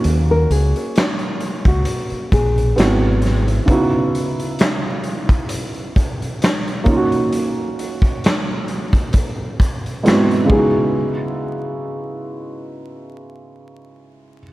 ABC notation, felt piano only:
X:1
M:4/4
L:1/8
Q:"Swing 16ths" 1/4=66
K:C#dor
V:1 name="Felt piano"
[A,CDF]6 [B,^B,EF]2 | [C,B,DEF]6- [C,B,DEF] [A,CD^EF]- | [A,CD^EF]6 [G,,B,^B,=EF] [C,G,=B,DEF]- | [C,G,B,DEF]8 |]